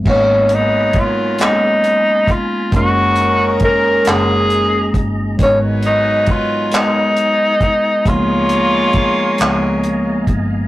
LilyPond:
<<
  \new Staff \with { instrumentName = "Tonewheel organ" } { \time 6/8 \key gis \dorian \tempo 4. = 45 <gis'' ais'' b''>2. | <gis' dis'' ais''>2. | <gis'' ais''>2. | <dis'' eis'' gis''>2. | }
  \new Staff \with { instrumentName = "Tenor saxophone" } { \time 6/8 \key gis \dorian cis'8 dis'8 eis'8 dis'4 eis'8 | fis'4 ais'8 gis'4 r8 | cis'8 dis'8 eis'8 dis'4. | eis'2 r4 | }
  \new Staff \with { instrumentName = "Horn section" } { \time 6/8 \key gis \dorian <dis fis b>2~ <dis fis b>8 r8 | <dis cis' ais'>2~ <dis cis' ais'>8 r8 | <fis dis' b'>2~ <fis dis' b'>8 r8 | <ais gis' cis''>2~ <ais gis' cis''>8 r8 | }
  \new Staff \with { instrumentName = "Tine electric piano" } { \time 6/8 \key gis \dorian <fis gis ais b dis'>4. <fis gis ais b cis' dis'>4. | <fis gis a ais cis' dis'>4. <fis gis ais cis' fis'>4. | <fis gis b d' dis' ais'>4. <fis gis b eis' ais'>4. | <eis gis ais b dis'>4. <eis gis ais b e' eis'>4. | }
  \new Staff \with { instrumentName = "Fingered electric bass" } { \clef bass \time 6/8 \key gis \dorian gis,,2. | fis,,4. fis,,4 g,,8 | gis,,2. | cis,4. cis,4 g,,8 | }
  \new DrumStaff \with { instrumentName = "Drums" } \drummode { \time 6/8 <cymc bd>8 hh8 <hh bd>8 <hc hh>8 hh8 <hh bd>8 | <hh bd>8 hh8 <hh bd>8 <hc hh>8 hh8 <hh bd>8 | <hh bd>8 hh8 <hh bd>8 <hc hh>8 hh8 <hh bd>8 | <hh bd>8 hh8 <hh bd>8 <hc hh>8 hh8 <hh bd>8 | }
>>